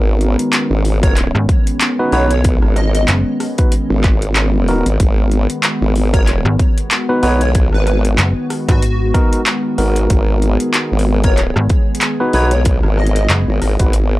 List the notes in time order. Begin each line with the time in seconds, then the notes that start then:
Already playing: G#1 D#3 G#3 B3 C#4 D#4 F#4 A#4
0.21 closed hi-hat
0.39 closed hi-hat
0.53 clap, closed hi-hat
0.71 G#1
0.85 open hi-hat
1.03 B3 D#4 F#4 A#4 C#5, kick, closed hi-hat
1.17 clap, closed hi-hat
1.35 G#1, cross-stick
1.49 kick, closed hi-hat
1.67 closed hi-hat
1.81 clap, closed hi-hat
1.99 B3 D#4 F#4 B4
2.12 B1 B3 D#4 F#4 B4 C#5, open hi-hat
2.30 C#5, closed hi-hat
2.44 kick, closed hi-hat
2.62 G#1, cross-stick
2.76 D#5, cross-stick, closed hi-hat
2.95 D#5, closed hi-hat
3.08 F#1, clap, closed hi-hat
3.40 cross-stick, open hi-hat
3.58 B3 D#4 F#4 B4, kick, closed hi-hat
3.72 closed hi-hat
3.90 G#1
4.04 kick, clap, closed hi-hat
4.22 closed hi-hat
4.36 clap, closed hi-hat
4.68 B3 D#4 F#4 A#4, open hi-hat
4.86 G#1, closed hi-hat
5.00 G#1 F#4, kick, closed hi-hat
5.31 closed hi-hat
5.50 closed hi-hat
5.63 clap, closed hi-hat
5.82 G#1
5.95 open hi-hat
6.13 B3 D#4 F#4 A#4 C#5, kick, closed hi-hat
6.27 clap, closed hi-hat
6.45 G#1, cross-stick
6.59 kick, closed hi-hat
6.78 closed hi-hat
6.91 clap, closed hi-hat
7.09 B3 D#4 F#4 B4
7.23 B1 B3 D#4 F#4 B4 C#5, open hi-hat
7.41 C#5, closed hi-hat
7.55 kick, closed hi-hat
7.73 G#1 B4, cross-stick
7.87 B4, cross-stick, closed hi-hat
8.05 closed hi-hat
8.18 F#1, clap, closed hi-hat
8.50 cross-stick, open hi-hat
8.68 G#1 B3 D#4 F#4 B4, kick, closed hi-hat
8.83 closed hi-hat
9.14 B3 D#4 F#4 A#4, kick, closed hi-hat
9.33 closed hi-hat
9.46 clap, closed hi-hat
9.78 G#1 B3 D#4 F#4 A#4, open hi-hat
9.96 closed hi-hat
10.10 G#1 G#4, kick, closed hi-hat
10.42 closed hi-hat
10.60 closed hi-hat
10.74 clap, closed hi-hat
10.92 G#1
10.99 open hi-hat
11.24 B3 D#4 F#4 A#4 C#5, kick, closed hi-hat
11.38 clap, closed hi-hat
11.56 G#1, cross-stick
11.69 kick, closed hi-hat
11.95 closed hi-hat
12.01 clap, closed hi-hat
12.20 B3 D#4 F#4 B4
12.33 B1 B3 D#4 F#4 B4 C#5, open hi-hat
12.51 C#5, closed hi-hat
12.65 kick, closed hi-hat
12.83 G#1, cross-stick
12.97 D#5, cross-stick
13.07 closed hi-hat
13.16 D#5, closed hi-hat
13.30 F#1, clap, closed hi-hat
13.48 G#1
13.62 G#1, cross-stick, open hi-hat
13.79 G#1 B3 D#4 F#4 B4, kick, closed hi-hat
13.93 closed hi-hat